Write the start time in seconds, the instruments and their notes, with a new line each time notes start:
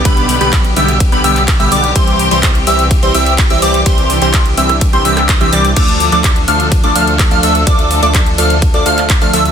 Already playing: string section D3 B3 G4
0.05 detuned saw bass B1, supersaw synth D3 G3 B3 G4 B4, digital synth lead B5, kick, closed hi-hat, ride
0.17 closed hi-hat
0.29 open hi-hat
0.41 detuned saw bass B1, supersaw synth D3 G3 B3 G4 B4, digital synth lead B5, closed hi-hat
0.53 kick, clap, closed hi-hat, ride
0.65 closed hi-hat
0.76 detuned saw bass B1, supersaw synth D3 G3 B3 G4 E5, digital synth lead E6, open hi-hat
0.88 closed hi-hat
1.00 kick, closed hi-hat, ride
1.12 detuned saw bass B1, supersaw synth D3 G3 B3 G4 B4, digital synth lead B5, closed hi-hat
1.24 detuned saw bass B1, supersaw synth D3 G3 B3 G4 E5, digital synth lead E6, open hi-hat
1.36 clap, closed hi-hat
1.48 kick, clap, closed hi-hat, ride
1.60 detuned saw bass B1, supersaw synth D3 G3 B3 G4 E5, digital synth lead E6, closed hi-hat
1.72 detuned saw bass B1, supersaw synth D3 G3 B3 G4 D5, digital synth lead D6, open hi-hat
1.84 closed hi-hat
1.96 detuned saw bass C2, supersaw synth E3 G3 C4 G4 C5, string section E3 C4, digital synth lead C6, kick, closed hi-hat, ride
2.08 closed hi-hat
2.19 open hi-hat
2.31 detuned saw bass C2, supersaw synth E3 G3 C4 G4 C5, digital synth lead C6, closed hi-hat
2.43 kick, clap, closed hi-hat, ride
2.55 closed hi-hat
2.67 detuned saw bass C2, supersaw synth E3 G3 C4 G4 E5, digital synth lead E6, open hi-hat
2.79 closed hi-hat
2.91 kick, closed hi-hat, ride
3.03 detuned saw bass C2, supersaw synth E3 G3 C4 G4 C5, digital synth lead C6, closed hi-hat
3.14 detuned saw bass C2, supersaw synth E3 G3 C4 G4 E5, digital synth lead E6, open hi-hat
3.26 closed hi-hat
3.38 kick, clap, closed hi-hat, ride
3.50 detuned saw bass C2, supersaw synth E3 G3 C4 G4 E5, digital synth lead E6, closed hi-hat
3.62 detuned saw bass C2, supersaw synth E3 G3 C4 G4 D5, digital synth lead D6, open hi-hat
3.74 closed hi-hat
3.86 detuned saw bass C2, supersaw synth E3 G3 C4 G4 C5, string section D4, digital synth lead C6, kick, closed hi-hat, ride
3.98 closed hi-hat
4.10 open hi-hat
4.22 detuned saw bass C2, supersaw synth E3 G3 C4 G4 C5, digital synth lead C6, closed hi-hat
4.34 kick, clap, closed hi-hat, ride
4.46 closed hi-hat
4.57 detuned saw bass C2, supersaw synth E3 G3 C4 G4 E5, digital synth lead E6, open hi-hat
4.69 cross-stick, closed hi-hat
4.81 kick, closed hi-hat, ride
4.93 detuned saw bass C2, supersaw synth E3 G3 C4 G4 C5, digital synth lead C6, closed hi-hat
5.05 detuned saw bass C2, supersaw synth E3 G3 C4 G4 E5, digital synth lead E6, open hi-hat
5.17 cross-stick, clap, closed hi-hat
5.29 kick, clap, closed hi-hat, ride
5.41 detuned saw bass C2, supersaw synth E3 G3 C4 G4 E5, digital synth lead E6, closed hi-hat
5.53 detuned saw bass C2, supersaw synth E3 G3 C4 G4 D5, digital synth lead D6, open hi-hat
5.65 closed hi-hat
5.76 detuned saw bass D2, string section F3 A4, supersaw synth F3 A3 D4 A4 D5, digital synth lead D6, kick, closed hi-hat, crash, ride
5.88 closed hi-hat
6.00 open hi-hat
6.12 detuned saw bass D2, supersaw synth F3 A3 D4 A4 D5, digital synth lead D6, closed hi-hat
6.24 kick, clap, closed hi-hat, ride
6.36 closed hi-hat
6.48 detuned saw bass D2, supersaw synth F3 A3 D4 A4 F5, digital synth lead F6, open hi-hat
6.60 closed hi-hat
6.72 kick, closed hi-hat, ride
6.84 detuned saw bass D2, supersaw synth F3 A3 D4 A4 D5, digital synth lead D6, closed hi-hat
6.96 detuned saw bass D2, supersaw synth F3 A3 D4 A4 F5, digital synth lead F6, open hi-hat
7.07 closed hi-hat
7.19 kick, clap, closed hi-hat, ride
7.31 detuned saw bass D2, supersaw synth F3 A3 D4 A4 F5, digital synth lead F6, closed hi-hat
7.43 detuned saw bass D2, supersaw synth F3 A3 D4 A4 E5, digital synth lead E6, open hi-hat
7.55 closed hi-hat
7.67 detuned saw bass D2, supersaw synth F3 A3 D4 A4 D5, digital synth lead D6, kick, closed hi-hat, ride
7.79 closed hi-hat
7.91 open hi-hat
8.03 detuned saw bass D2, supersaw synth F3 A3 D4 A4 D5, digital synth lead D6, closed hi-hat
8.15 kick, clap, closed hi-hat, ride
8.26 closed hi-hat
8.38 detuned saw bass D2, supersaw synth F3 A3 D4 A4 F5, digital synth lead F6, open hi-hat
8.50 closed hi-hat
8.62 kick, closed hi-hat, ride
8.74 detuned saw bass D2, supersaw synth F3 A3 D4 A4 D5, digital synth lead D6, closed hi-hat
8.86 detuned saw bass D2, supersaw synth F3 A3 D4 A4 F5, digital synth lead F6, open hi-hat
8.98 clap, closed hi-hat
9.10 kick, clap, closed hi-hat, ride
9.22 detuned saw bass D2, supersaw synth F3 A3 D4 A4 F5, digital synth lead F6, closed hi-hat
9.33 detuned saw bass D2, supersaw synth F3 A3 D4 A4 E5, digital synth lead E6, open hi-hat
9.45 closed hi-hat